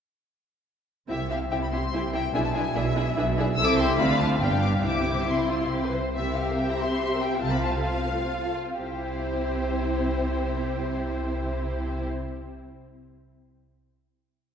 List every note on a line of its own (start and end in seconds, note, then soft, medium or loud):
1.09 1.47 C2 soft
1.09 1.47 C3 medium
1.09 1.17 C4 soft
1.09 1.17 E4 soft
1.09 1.19 G4 soft
1.09 1.29 E5 medium
1.09 1.18 E5 soft
1.30 1.39 C4 soft
1.30 1.39 E4 soft
1.30 1.39 G4 soft
1.30 1.38 E5 soft
1.30 1.38 F5 soft
1.51 1.89 C2 medium
1.51 1.89 C3 soft
1.51 1.60 C4 soft
1.51 1.60 E4 soft
1.51 1.59 G4 soft
1.51 1.59 E5 soft
1.51 1.56 G5 medium
1.62 1.67 B5 medium
1.72 1.81 C4 soft
1.72 1.81 E4 soft
1.72 1.81 G4 soft
1.72 1.81 E5 soft
1.72 2.13 C6 medium
1.92 2.30 C2 medium
1.92 2.30 C3 medium
1.92 2.01 C4 soft
1.92 2.01 E4 soft
1.92 2.02 G4 soft
1.92 2.02 E5 soft
2.13 2.21 C4 soft
2.13 2.21 E4 soft
2.13 2.22 G4 soft
2.13 2.22 E5 soft
2.13 2.34 G5 medium
2.34 2.71 B1 medium
2.34 2.72 B2 medium
2.34 2.42 D4 medium
2.34 2.43 E4 soft
2.34 2.43 G#4 soft
2.34 2.43 E5 soft
2.34 2.38 G#5 medium
2.44 2.55 A5 medium
2.54 2.63 D4 soft
2.54 2.63 E4 medium
2.54 2.63 G#4 soft
2.54 2.62 E5 medium
2.54 2.75 G#5 medium
2.75 3.12 B1 medium
2.75 3.13 B2 medium
2.75 2.83 D4 soft
2.75 2.83 E4 soft
2.75 2.83 G#4 medium
2.75 3.37 E5 medium
2.75 2.84 E5 medium
2.96 3.04 D4 medium
2.96 3.04 E4 medium
2.96 3.04 G#4 medium
2.96 3.05 E5 medium
3.17 3.53 B1 medium
3.17 3.53 B2 medium
3.17 3.25 D4 medium
3.17 3.25 E4 medium
3.17 3.26 G#4 medium
3.17 3.26 E5 medium
3.37 3.45 D4 medium
3.37 3.45 E4 medium
3.37 3.47 G#4 medium
3.37 3.47 E5 medium
3.56 3.96 C2 medium
3.56 3.96 C3 medium
3.56 3.97 C4 medium
3.56 3.97 E4 medium
3.56 3.78 A4 medium
3.56 3.66 E6 loud
3.60 3.97 E5 medium
3.68 3.78 D6 medium
3.77 3.99 G4 medium
3.77 3.98 C6 medium
3.98 4.41 D2 medium
3.98 4.41 D3 medium
3.98 4.41 C4 medium
3.98 4.40 D4 medium
3.98 4.41 F4 medium
3.98 4.41 F5 medium
3.98 4.19 B5 medium
4.19 4.27 A5 medium
4.41 4.84 G1 medium
4.41 4.84 G2 medium
4.41 4.84 B3 medium
4.41 4.83 D4 medium
4.41 4.83 G4 medium
4.41 4.84 F5 medium
4.41 4.62 G5 medium
4.61 4.69 D6 medium
4.83 5.92 C2 soft
4.83 5.92 C3 soft
4.83 5.27 C4 soft
4.83 5.27 E4 soft
4.83 5.27 G4 soft
4.83 5.28 E5 soft
4.83 5.27 D6 medium
5.27 5.94 C4 soft
5.27 5.49 E4 medium
5.27 5.94 E4 soft
5.27 5.93 C6 medium
5.51 5.73 F4 soft
5.72 5.83 G4 soft
5.85 5.95 B4 medium
5.95 6.16 C5 soft
6.15 6.51 C2 medium
6.15 6.52 C3 medium
6.15 8.51 C4 soft
6.15 6.26 C4 soft
6.15 7.38 G4 soft
6.15 6.35 E5 medium
6.15 7.38 E5 soft
6.28 6.38 E4 soft
6.36 6.47 G4 soft
6.36 6.58 F5 medium
6.48 6.58 A#4 soft
6.57 6.69 G4 soft
6.57 6.68 G5 medium
6.70 6.80 E4 soft
6.70 6.80 A#5 medium
6.79 6.90 C4 soft
6.79 7.21 C6 medium
6.92 7.01 E4 soft
7.03 7.12 G4 soft
7.13 7.22 A#4 soft
7.21 7.32 G4 soft
7.21 7.42 G5 medium
7.33 7.43 E4 soft
7.42 7.78 C2 medium
7.42 7.78 C3 medium
7.42 7.53 A3 soft
7.42 8.53 F4 soft
7.42 8.54 F5 soft
7.42 7.52 A5 medium
7.53 7.63 C4 soft
7.53 7.63 B5 medium
7.63 7.74 F4 soft
7.63 7.71 A5 medium
7.76 7.86 A4 soft
7.85 7.97 F4 soft
7.85 8.53 F5 medium
7.99 8.09 C4 soft
8.09 8.19 A3 soft
8.20 8.31 C4 soft
8.30 8.42 F4 soft
8.42 8.54 A4 soft
8.53 8.66 F4 soft
8.64 8.77 C4 soft
8.77 12.06 C2 soft
8.77 12.05 C3 soft
8.77 12.06 C4 soft
8.77 12.06 E4 soft
8.77 12.06 G4 soft
8.77 12.05 C5 soft
8.77 12.06 C5 soft